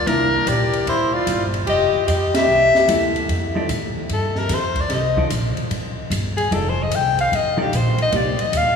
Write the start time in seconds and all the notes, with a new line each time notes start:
Already playing: F4
0.06 C2 A#3 D4 E4 A#4, kick, ride
0.46 A#1 G4 D5, kick, hi-hat pedal, ride
0.73 ride
0.86 A1 E4 C5, kick, ride
1.14 F4 D5
1.27 G1, kick, hi-hat pedal, ride
1.54 ride
1.67 F1 G4 D#5, kick, ride
1.93 muted upright bass stroke
2.07 F2 G4 D#5, kick, hi-hat pedal, ride
2.34 G4 E5, snare, ride
2.48 C2
2.75 snare
2.88 D2 A#3 E4 A4, kick, hi-hat pedal, ride
3.16 ride
3.28 F2, kick, ride
3.55 F3 D#4 A4 D5
3.69 A2, kick, hi-hat pedal, ride
3.94 muted upright bass stroke
4.09 G2 A4, kick, ride
4.35 A#4, snare
4.49 F2, kick, snare, hi-hat pedal, ride
4.54 C5
4.76 kick, ride
4.80 D5
4.89 C2, kick, snare, ride
4.94 D#5
5.16 F3 D#4 A4 D5, kick
5.30 A#1, kick, hi-hat pedal, ride
5.55 muted upright bass stroke, ride
5.70 A1, kick, ride
6.10 G1, kick, hi-hat pedal, ride
6.37 G#4, ride
6.51 F1 F3 D#4 A4 D5, kick, ride
6.69 C5
6.83 D#5
6.91 C2 G5, kick, hi-hat pedal, ride
7.19 F5, ride
7.32 A1 D#5, kick, ride
7.57 F3 D#4 A4 D5
7.62 G4
7.72 A#1 C5, kick, hi-hat pedal, ride
7.98 D#5, ride
8.12 C2 A#3 D#4 G4, kick, ride
8.17 D5
8.39 D#5, muted upright bass stroke, ride
8.52 D#2, kick, hi-hat pedal, ride
8.57 F5